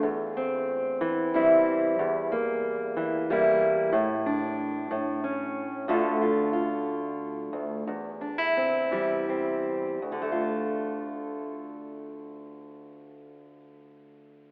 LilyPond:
\new Staff \with { instrumentName = "Steel-string acoustic guitar" } { \time 6/8 \key d \minor \tempo 4. = 61 << { r8 c'4. <g c' e'>4~ | <g c' e'>8 bes4. <g bes e'>4 | r8 d'4 r8 cis'4 | <d a f'>8 f'8 f'2 |
r8 d'16 e'16 c'8 g8 c'4 | <d a f'>2.~ | <d a f'>2. | } \\ { e,4. e4. | e,4. e4. | a,4. a,4. | d,2~ d,8 d,8 |
e,4. e4. | d,2.~ | d,2. | } >> }